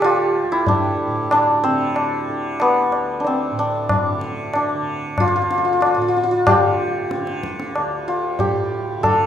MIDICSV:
0, 0, Header, 1, 4, 480
1, 0, Start_track
1, 0, Tempo, 643777
1, 978, Time_signature, 4, 2, 24, 8
1, 6907, End_track
2, 0, Start_track
2, 0, Title_t, "Santur"
2, 0, Program_c, 0, 15
2, 0, Note_on_c, 0, 67, 67
2, 0, Note_on_c, 0, 69, 97
2, 32, Note_on_c, 0, 65, 85
2, 386, Note_on_c, 0, 64, 84
2, 431, Note_off_c, 0, 65, 0
2, 508, Note_on_c, 0, 62, 78
2, 983, Note_off_c, 0, 62, 0
2, 986, Note_on_c, 0, 62, 89
2, 1219, Note_on_c, 0, 60, 89
2, 1227, Note_off_c, 0, 69, 0
2, 1949, Note_on_c, 0, 59, 80
2, 1993, Note_off_c, 0, 60, 0
2, 2283, Note_off_c, 0, 67, 0
2, 2383, Note_off_c, 0, 62, 0
2, 2386, Note_on_c, 0, 62, 57
2, 2435, Note_on_c, 0, 60, 71
2, 2480, Note_off_c, 0, 59, 0
2, 2673, Note_off_c, 0, 62, 0
2, 2676, Note_on_c, 0, 62, 72
2, 2979, Note_off_c, 0, 64, 0
2, 3391, Note_off_c, 0, 62, 0
2, 3394, Note_on_c, 0, 62, 67
2, 3878, Note_on_c, 0, 65, 82
2, 3931, Note_off_c, 0, 65, 0
2, 3934, Note_on_c, 0, 65, 61
2, 3991, Note_off_c, 0, 65, 0
2, 3994, Note_on_c, 0, 65, 66
2, 4037, Note_off_c, 0, 65, 0
2, 4040, Note_on_c, 0, 65, 50
2, 4102, Note_off_c, 0, 65, 0
2, 4105, Note_on_c, 0, 65, 58
2, 4155, Note_off_c, 0, 65, 0
2, 4158, Note_on_c, 0, 65, 48
2, 4207, Note_off_c, 0, 65, 0
2, 4210, Note_on_c, 0, 65, 56
2, 4268, Note_off_c, 0, 65, 0
2, 4271, Note_on_c, 0, 65, 49
2, 4325, Note_off_c, 0, 65, 0
2, 4328, Note_on_c, 0, 65, 55
2, 4366, Note_off_c, 0, 65, 0
2, 4369, Note_on_c, 0, 65, 47
2, 4430, Note_off_c, 0, 65, 0
2, 4433, Note_on_c, 0, 65, 54
2, 4482, Note_off_c, 0, 65, 0
2, 4485, Note_on_c, 0, 65, 46
2, 4532, Note_off_c, 0, 65, 0
2, 4535, Note_on_c, 0, 65, 57
2, 4593, Note_off_c, 0, 65, 0
2, 4596, Note_on_c, 0, 65, 47
2, 4645, Note_off_c, 0, 65, 0
2, 4648, Note_on_c, 0, 65, 62
2, 4702, Note_off_c, 0, 65, 0
2, 4705, Note_on_c, 0, 65, 55
2, 4827, Note_on_c, 0, 67, 84
2, 5422, Note_off_c, 0, 60, 0
2, 6020, Note_off_c, 0, 65, 0
2, 6023, Note_on_c, 0, 65, 68
2, 6177, Note_off_c, 0, 62, 0
2, 6258, Note_off_c, 0, 67, 0
2, 6261, Note_on_c, 0, 67, 76
2, 6734, Note_on_c, 0, 69, 87
2, 6907, Note_off_c, 0, 65, 0
2, 6907, Note_off_c, 0, 67, 0
2, 6907, Note_off_c, 0, 69, 0
2, 6907, End_track
3, 0, Start_track
3, 0, Title_t, "Tanpura"
3, 0, Program_c, 1, 104
3, 0, Note_on_c, 1, 38, 58
3, 0, Note_on_c, 1, 45, 61
3, 0, Note_on_c, 1, 50, 55
3, 323, Note_off_c, 1, 38, 0
3, 326, Note_on_c, 1, 38, 59
3, 788, Note_off_c, 1, 45, 0
3, 791, Note_on_c, 1, 45, 55
3, 1249, Note_off_c, 1, 50, 0
3, 1249, Note_on_c, 1, 50, 56
3, 1709, Note_off_c, 1, 50, 0
3, 1709, Note_on_c, 1, 50, 56
3, 2159, Note_off_c, 1, 38, 0
3, 2162, Note_on_c, 1, 38, 54
3, 2617, Note_off_c, 1, 45, 0
3, 2620, Note_on_c, 1, 45, 59
3, 3074, Note_off_c, 1, 50, 0
3, 3074, Note_on_c, 1, 50, 60
3, 3541, Note_off_c, 1, 50, 0
3, 3541, Note_on_c, 1, 50, 58
3, 3992, Note_off_c, 1, 38, 0
3, 3995, Note_on_c, 1, 38, 55
3, 4439, Note_off_c, 1, 45, 0
3, 4442, Note_on_c, 1, 45, 56
3, 4894, Note_off_c, 1, 50, 0
3, 4894, Note_on_c, 1, 50, 57
3, 5347, Note_off_c, 1, 50, 0
3, 5347, Note_on_c, 1, 50, 54
3, 5801, Note_off_c, 1, 38, 0
3, 5804, Note_on_c, 1, 38, 60
3, 6259, Note_off_c, 1, 45, 0
3, 6262, Note_on_c, 1, 45, 54
3, 6712, Note_off_c, 1, 50, 0
3, 6712, Note_on_c, 1, 50, 63
3, 6907, Note_off_c, 1, 38, 0
3, 6907, Note_off_c, 1, 45, 0
3, 6907, Note_off_c, 1, 50, 0
3, 6907, End_track
4, 0, Start_track
4, 0, Title_t, "Tabla"
4, 16, Note_on_c, 9, 60, 70
4, 90, Note_off_c, 9, 60, 0
4, 496, Note_on_c, 9, 63, 71
4, 496, Note_on_c, 9, 64, 70
4, 571, Note_off_c, 9, 63, 0
4, 571, Note_off_c, 9, 64, 0
4, 978, Note_on_c, 9, 60, 76
4, 1052, Note_off_c, 9, 60, 0
4, 1461, Note_on_c, 9, 60, 73
4, 1535, Note_off_c, 9, 60, 0
4, 1938, Note_on_c, 9, 60, 69
4, 2012, Note_off_c, 9, 60, 0
4, 2180, Note_on_c, 9, 60, 51
4, 2254, Note_off_c, 9, 60, 0
4, 2420, Note_on_c, 9, 63, 73
4, 2495, Note_off_c, 9, 63, 0
4, 2903, Note_on_c, 9, 60, 75
4, 2903, Note_on_c, 9, 64, 72
4, 2978, Note_off_c, 9, 60, 0
4, 2978, Note_off_c, 9, 64, 0
4, 3142, Note_on_c, 9, 62, 60
4, 3216, Note_off_c, 9, 62, 0
4, 3381, Note_on_c, 9, 60, 71
4, 3456, Note_off_c, 9, 60, 0
4, 3860, Note_on_c, 9, 60, 66
4, 3860, Note_on_c, 9, 64, 61
4, 3934, Note_off_c, 9, 60, 0
4, 3934, Note_off_c, 9, 64, 0
4, 4105, Note_on_c, 9, 62, 54
4, 4179, Note_off_c, 9, 62, 0
4, 4341, Note_on_c, 9, 60, 78
4, 4415, Note_off_c, 9, 60, 0
4, 4822, Note_on_c, 9, 60, 101
4, 4822, Note_on_c, 9, 64, 88
4, 4896, Note_off_c, 9, 60, 0
4, 4896, Note_off_c, 9, 64, 0
4, 5301, Note_on_c, 9, 62, 70
4, 5375, Note_off_c, 9, 62, 0
4, 5421, Note_on_c, 9, 62, 57
4, 5496, Note_off_c, 9, 62, 0
4, 5543, Note_on_c, 9, 37, 54
4, 5618, Note_off_c, 9, 37, 0
4, 5663, Note_on_c, 9, 62, 61
4, 5738, Note_off_c, 9, 62, 0
4, 5782, Note_on_c, 9, 60, 70
4, 5857, Note_off_c, 9, 60, 0
4, 6255, Note_on_c, 9, 63, 73
4, 6255, Note_on_c, 9, 64, 69
4, 6330, Note_off_c, 9, 63, 0
4, 6330, Note_off_c, 9, 64, 0
4, 6739, Note_on_c, 9, 60, 78
4, 6739, Note_on_c, 9, 64, 69
4, 6814, Note_off_c, 9, 60, 0
4, 6814, Note_off_c, 9, 64, 0
4, 6907, End_track
0, 0, End_of_file